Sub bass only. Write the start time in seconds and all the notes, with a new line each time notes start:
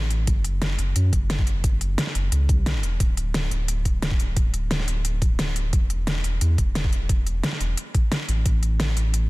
Already playing: A1
0.27 F#1
0.79 F#1
0.96 F#2
1.13 F#1
2.15 F#1
2.32 C#2
2.58 B1
2.75 F#1
2.83 E1
3.00 D1
3.51 D1
4.88 D1
5.73 E1
6.24 E1
6.41 E2
6.58 E1
7.60 E1
8.29 A1
8.46 A1
8.97 A1